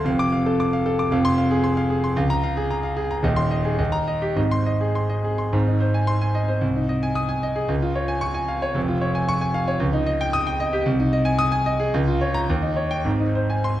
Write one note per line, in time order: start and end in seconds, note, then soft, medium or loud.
0.04 1.08 F1 medium
0.04 1.08 F2 medium
0.04 0.27 F5 medium
0.19 0.41 D6 loud
0.32 0.54 F5 medium
0.46 0.68 A4 medium
0.60 0.81 D6 medium
0.73 0.94 F5 medium
0.86 1.07 A4 medium
0.99 1.12 D6 medium
1.11 2.13 F1 medium
1.11 2.13 F2 loud
1.11 1.32 F5 medium
1.25 1.45 C6 loud
1.38 1.58 F5 medium
1.51 1.71 G#4 medium
1.64 1.84 C6 medium
1.77 1.98 F5 medium
1.90 2.11 G#4 medium
2.04 2.17 C6 medium
2.16 3.21 C#2 loud
2.16 2.38 F5 medium
2.30 2.51 A#5 loud
2.43 2.65 F5 medium
2.57 2.78 G#4 medium
2.71 2.92 A#5 medium
2.83 3.05 F5 medium
2.97 3.18 G#4 medium
3.11 3.24 A#5 medium
3.23 3.77 D#1 medium
3.23 3.77 D#2 medium
3.23 3.46 D#5 medium
3.36 3.59 C6 loud
3.51 3.73 D#5 medium
3.65 3.79 G#4 medium
3.79 4.35 D#2 medium
3.79 4.02 D#5 medium
3.92 4.16 A#5 loud
4.08 4.31 D#5 medium
4.22 4.37 G4 medium
4.36 5.49 G#1 medium
4.36 5.50 G#2 medium
4.36 4.61 D#5 medium
4.51 4.75 C6 medium
4.66 4.90 D#5 medium
4.81 5.04 G#4 medium
4.95 5.19 C6 medium
5.09 5.33 D#5 medium
5.24 5.48 G#4 medium
5.38 5.53 C6 medium
5.52 6.59 G#1 medium
5.52 6.59 G#2 medium
5.67 5.90 D#4 medium
5.80 6.03 C5 medium
5.94 6.16 G#5 medium
6.07 6.30 C6 loud
6.21 6.43 G#5 medium
6.35 6.57 D#5 medium
6.48 6.62 C5 medium
6.61 7.66 C2 medium
6.75 6.98 D#4 medium
6.89 7.11 D#5 medium
7.03 7.25 G#5 medium
7.15 7.38 D#6 loud
7.29 7.51 G#5 medium
7.43 7.64 D#5 medium
7.56 7.69 G#4 medium
7.69 8.72 C#2 medium
7.82 8.04 F4 medium
7.96 8.17 C#5 medium
8.08 8.30 G#5 medium
8.21 8.43 C#6 loud
8.34 8.57 G#5 medium
8.48 8.70 F5 medium
8.62 8.76 C#5 medium
8.74 9.77 F1 medium
8.74 9.78 F2 loud
8.88 9.10 F4 medium
9.01 9.23 C#5 medium
9.15 9.36 G#5 medium
9.29 9.50 C#6 loud
9.41 9.63 G#5 medium
9.54 9.76 F5 medium
9.68 9.81 C#5 medium
9.80 10.82 C#2 medium
9.93 10.15 D#4 medium
10.06 10.28 D#5 medium
10.21 10.42 G5 loud
10.33 10.54 D#6 loud
10.47 10.68 G5 loud
10.60 10.81 D#5 medium
10.73 10.86 G4 medium
10.86 11.90 C2 loud
11.00 11.20 D#4 medium
11.13 11.33 D#5 medium
11.25 11.46 G#5 loud
11.39 11.60 D#6 loud
11.52 11.74 G#5 loud
11.66 11.88 D#5 medium
11.80 11.93 G#4 medium
11.94 12.47 C#2 loud
12.08 12.29 F4 medium
12.21 12.43 C#5 medium
12.34 12.48 A#5 loud
12.50 13.04 D#2 loud
12.62 12.85 D#4 medium
12.76 12.99 C#5 medium
12.91 13.05 G5 loud
13.04 13.80 G#1 medium
13.04 13.80 G#2 medium
13.20 13.43 D#4 medium
13.35 13.58 C5 medium
13.50 13.72 G#5 medium
13.64 13.80 C6 medium